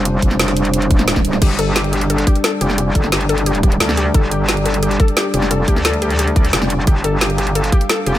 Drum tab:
CC |----------------|x---------------|----------------|----------------|
HH |x-x-xxxxxxxxx-x-|x-x-xxxxxxxxx-x-|x-x-xxxxxxxxx-x-|x-x-xxxxxxxxx-x-|
SD |---ooo-----ooo-o|----o-------o--o|---oo-------oo--|----o-------o--o|
BD |--o-------o--o--|o---------o-----|--o-------o-----|o---------o-----|

CC |----------------|----------------|
HH |x-x-xxxxxxxxx-x-|x-x-xxxxxxxxx-x-|
SD |---oo-------oo--|----o-------o--o|
BD |--o-------o-----|o---------o-----|